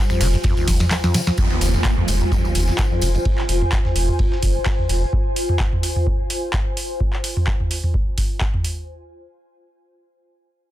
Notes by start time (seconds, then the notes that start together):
Already playing: G3 D#4 F4 C5 G#5
0.10 F2, finger snap, tambourine
0.21 F1 D#3, snare, open hi-hat, ride, tambourine
0.33 F2, tambourine
0.44 F2, kick, snare, ride, tambourine
0.57 D#2, tambourine
0.68 F1, kick, snare, open hi-hat, ride, tambourine
0.80 F2, snare, mid tom, tambourine
0.91 snare, clap, ride, tambourine
1.04 F2, snare, tambourine
1.14 D#3, snare, open hi-hat, ride, tambourine
1.27 F2, snare, tambourine
1.38 F2 F4, kick, ride, tambourine, downlifter
1.50 D#2 G#5, snare, tambourine
1.61 F1, snare, open hi-hat, ride, tambourine
1.74 F2, snare, mid tom, tambourine
1.85 C5, kick, snare, clap, ride, tambourine
1.97 F2, mid tom
2.08 F1 D#3, open hi-hat, ride, tambourine
2.21 F2, mid tom, tambourine
2.32 F2, kick, ride, tambourine
2.44 D#2, tambourine
2.55 F1, open hi-hat, ride, tambourine
2.67 F2, snare, tambourine
2.78 kick, snare, clap, ride, tambourine
2.91 F2
3.02 F1 D#3, open hi-hat, ride, tambourine
3.15 F2, ride, tambourine
3.25 kick, ride
3.38 snare, clap
3.49 F1, open hi-hat, ride
3.62 mid tom
3.72 kick, clap, ride
3.85 snare, mid tom
3.96 F1, open hi-hat, ride
4.08 mid tom
4.19 kick, ride
4.32 snare
4.43 F1, kick, open hi-hat, ride
4.66 kick, snare, clap, ride
4.79 mid tom
4.89 F1, open hi-hat
5.13 kick
5.36 open hi-hat
5.49 mid tom
5.60 kick, clap
5.73 mid tom
5.83 open hi-hat
5.96 mid tom
6.07 kick
6.30 open hi-hat
6.53 kick, clap
6.77 open hi-hat
7.00 kick
7.13 clap
7.24 open hi-hat
7.37 mid tom
7.47 kick, clap
7.60 mid tom
7.71 open hi-hat
7.83 mid tom
7.94 kick
8.18 kick, open hi-hat
8.41 kick, clap
8.54 mid tom
8.64 open hi-hat